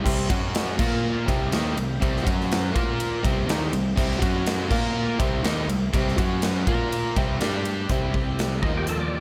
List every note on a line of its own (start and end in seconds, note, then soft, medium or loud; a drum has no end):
0.04 0.28 C2 medium
0.04 0.28 C3 loud
0.04 0.29 G3 medium
0.04 0.29 C4 loud
0.04 0.29 G4 medium
0.04 0.30 C5 medium
0.04 0.30 E5 loud
0.04 kick loud
0.04 crash loud
0.29 0.76 F#2 loud
0.29 0.78 F#3 medium
0.29 0.78 C#4 medium
0.29 0.77 C#4 medium
0.29 0.69 F#4 loud
0.29 0.78 F#4 medium
0.29 0.78 C#5 medium
0.29 0.69 C#5 medium
0.29 0.69 F#5 loud
0.29 kick loud
0.29 ride medium
0.55 snare loud
0.55 ride loud
0.77 1.25 A#2 medium
0.77 1.26 A#3 medium
0.77 1.27 F4 medium
0.77 1.18 F4 medium
0.77 1.27 A#4 loud
0.77 1.18 A#4 medium
0.77 1.27 A#4 medium
0.77 1.27 F5 medium
0.77 1.18 F5 loud
0.77 kick loud
0.77 crash loud
1.26 1.51 C2 loud
1.26 1.51 C3 medium
1.26 1.51 G3 loud
1.26 1.51 C4 loud
1.26 2.25 E4 medium
1.26 1.85 G4 medium
1.26 2.25 G4 medium
1.26 1.86 C5 medium
1.26 2.25 C5 medium
1.26 1.87 E5 loud
1.26 2.25 G5 medium
1.26 kick loud
1.26 ride medium
1.52 1.75 D#2 loud
1.52 1.76 D#3 medium
1.52 1.76 A#3 loud
1.52 1.76 D#4 loud
1.52 snare loud
1.52 ride medium
1.76 2.00 C2 medium
1.76 1.96 C3 medium
1.76 1.96 G3 medium
1.76 ride medium
2.00 2.24 C2 medium
2.00 2.22 C3 medium
2.00 2.23 G3 loud
2.00 2.23 C4 loud
2.00 2.25 G4 medium
2.00 2.25 C5 medium
2.00 2.25 E5 loud
2.00 kick loud
2.00 ride medium
2.16 snare soft
2.23 2.72 F#2 medium
2.23 2.72 F#3 medium
2.23 2.73 C#4 medium
2.23 2.63 F#4 medium
2.23 2.73 F#4 loud
2.23 2.74 F#4 medium
2.23 2.64 C#5 medium
2.23 2.74 C#5 medium
2.23 2.65 F#5 loud
2.23 2.74 F#5 medium
2.27 kick loud
2.27 ride medium
2.41 snare soft
2.52 snare loud
2.52 ride medium
2.73 3.20 A#2 medium
2.73 3.22 A#3 medium
2.73 3.13 F4 loud
2.73 3.22 F4 medium
2.73 3.24 F4 medium
2.73 3.13 A#4 medium
2.73 3.22 A#4 loud
2.73 3.23 A#4 medium
2.73 3.13 F5 loud
2.73 3.23 F5 medium
2.73 kick loud
2.73 ride medium
3.00 ride loud
3.22 3.47 C2 loud
3.22 3.46 C3 loud
3.22 3.46 G3 loud
3.22 3.47 C4 loud
3.22 4.21 E4 medium
3.22 3.81 G4 medium
3.22 4.20 G4 medium
3.22 3.82 C5 medium
3.22 4.21 C5 medium
3.22 3.82 E5 loud
3.22 4.21 G5 medium
3.22 kick loud
3.22 ride medium
3.46 3.71 D#2 loud
3.46 3.71 D#3 medium
3.46 3.71 A#3 loud
3.46 3.71 D#4 loud
3.46 ride loud
3.50 snare loud
3.72 3.95 C2 medium
3.72 3.92 C3 medium
3.72 3.92 G3 medium
3.72 ride medium
3.95 4.20 C2 medium
3.95 4.19 C3 medium
3.95 4.20 G3 loud
3.95 4.20 C4 loud
3.95 4.20 G4 medium
3.95 4.21 C5 medium
3.95 4.21 E5 loud
3.95 kick loud
3.95 crash medium
4.11 snare soft
4.18 4.67 F#2 loud
4.18 4.68 F#3 medium
4.18 4.68 C#4 medium
4.18 4.59 F#4 loud
4.18 4.69 F#4 loud
4.18 4.59 C#5 medium
4.18 4.60 F#5 loud
4.18 kick loud
4.18 ride medium
4.22 4.70 F#4 medium
4.22 4.70 C#5 medium
4.22 4.70 F#5 medium
4.46 snare loud
4.46 ride loud
4.68 5.16 A#2 medium
4.68 5.17 A#3 loud
4.68 5.18 F4 medium
4.68 5.09 F4 loud
4.68 5.19 F4 medium
4.68 5.18 A#4 loud
4.68 5.18 A#4 medium
4.68 5.10 A#4 medium
4.68 5.19 F5 medium
4.68 5.10 F5 loud
4.68 kick loud
4.68 crash loud
5.16 5.43 C3 medium
5.16 5.43 G3 loud
5.16 6.15 E4 medium
5.16 6.15 G4 medium
5.16 5.77 G4 medium
5.16 6.14 C5 medium
5.16 5.78 C5 medium
5.16 5.78 E5 loud
5.16 6.15 G5 medium
5.16 kick loud
5.16 ride medium
5.20 5.42 C2 loud
5.20 5.44 C4 loud
5.43 5.66 D#2 loud
5.43 5.67 D#3 medium
5.43 5.67 A#3 medium
5.43 5.67 D#4 loud
5.43 snare loud
5.43 ride loud
5.67 5.90 C2 medium
5.67 5.87 C3 medium
5.67 5.88 G3 medium
5.67 ride medium
5.93 6.16 C2 medium
5.93 6.16 C3 loud
5.93 6.17 G3 medium
5.93 6.17 C4 loud
5.93 6.18 G4 medium
5.93 6.18 C5 medium
5.93 6.18 E5 loud
5.93 kick loud
5.93 ride loud
6.08 snare soft
6.16 6.63 F#2 medium
6.16 6.65 F#3 medium
6.16 6.66 C#4 medium
6.16 6.56 F#4 medium
6.16 6.65 F#4 medium
6.16 6.66 F#4 loud
6.16 6.65 C#5 medium
6.16 6.56 C#5 medium
6.16 6.65 F#5 medium
6.16 6.57 F#5 loud
6.16 kick loud
6.16 ride medium
6.42 snare loud
6.42 ride loud
6.64 7.12 A#2 medium
6.64 7.15 A#3 medium
6.64 7.05 F4 loud
6.64 7.14 F4 medium
6.64 7.15 F4 loud
6.64 7.14 A#4 medium
6.64 7.05 A#4 medium
6.64 7.15 A#4 loud
6.64 7.14 F5 medium
6.64 7.06 F5 loud
6.64 kick loud
6.64 ride medium
6.92 ride loud
7.16 7.39 C2 medium
7.16 7.39 C3 loud
7.16 7.39 G3 medium
7.16 7.40 C4 loud
7.16 7.35 G4 loud
7.16 7.35 C5 medium
7.16 7.35 E5 loud
7.16 kick loud
7.16 ride medium
7.39 7.85 G2 medium
7.39 7.88 G3 medium
7.39 7.89 D4 medium
7.39 7.79 G4 medium
7.39 7.88 G4 medium
7.39 7.89 G4 loud
7.39 7.79 D5 medium
7.39 7.88 D5 medium
7.39 7.88 G5 medium
7.39 snare loud
7.39 ride medium
7.65 ride medium
7.89 8.63 C2 medium
7.89 8.12 C3 medium
7.89 8.13 G3 medium
7.89 8.13 C4 medium
7.89 8.61 E4 medium
7.89 8.62 E4 medium
7.89 8.29 G4 loud
7.89 8.62 G4 medium
7.89 8.62 C5 medium
7.89 8.28 C5 loud
7.89 8.29 E5 loud
7.89 8.62 G5 medium
7.89 kick loud
7.89 closed hi-hat medium
8.14 8.36 C3 medium
8.14 8.36 G3 medium
8.14 kick medium
8.39 8.60 C3 medium
8.39 8.60 G3 medium
8.39 8.63 G4 medium
8.39 8.63 C5 medium
8.39 8.64 G5 medium
8.39 snare loud
8.39 closed hi-hat medium
8.61 9.20 D#2 medium
8.61 8.86 D#3 medium
8.61 8.86 F3 medium
8.61 8.73 D#4 medium
8.61 8.78 E4 medium
8.61 9.20 F4 medium
8.61 8.78 F#4 medium
8.61 9.20 A#4 medium
8.61 8.78 B4 medium
8.61 8.78 F#5 medium
8.61 kick loud
8.65 8.87 A#3 medium
8.65 9.20 D#4 loud
8.65 9.20 D#5 medium
8.77 9.20 D#4 medium
8.77 9.20 F4 medium
8.77 8.87 G4 medium
8.77 9.20 A#4 medium
8.77 9.20 F5 medium
8.87 9.09 D#3 medium
8.87 9.10 F3 medium
8.87 8.99 A4 medium
8.87 closed hi-hat medium
8.99 9.20 D5 medium
9.14 9.20 D#3 medium
9.14 9.20 F3 medium